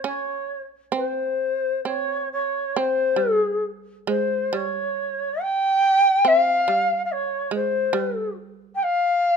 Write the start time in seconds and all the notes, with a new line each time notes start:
0.04 C#4 C#5
0.92 C4 C5
1.85 C4 C#5
2.32 C#5
2.76 C4 C5
3.16 G3
3.37 G#4
4.07 G#3 C5
4.53 G3 C#5
5.42 G5
6.25 C4 E5
6.39 F5
6.68 G3
7.05 F5
7.13 C#5
7.51 G#3 C5
7.93 G3
8.75 G5
8.83 F5